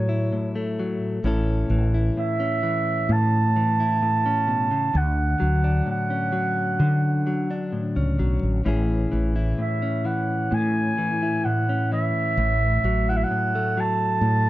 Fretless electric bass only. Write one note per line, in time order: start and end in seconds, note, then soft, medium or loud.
0.00 0.97 A2 medium
1.24 1.63 A1 medium
1.70 2.09 A1 medium
3.09 4.68 A2 medium
4.95 5.34 D2 medium
5.42 5.81 D2 medium
6.80 7.79 D3 medium
7.96 8.17 C#2 medium
8.20 8.40 B1 medium
8.43 8.64 A1 medium
8.66 9.06 A1 medium
9.13 9.52 A1 medium
10.52 12.11 A2 medium
12.37 12.77 A1 medium
12.84 13.24 A1 medium
14.21 14.50 A2 medium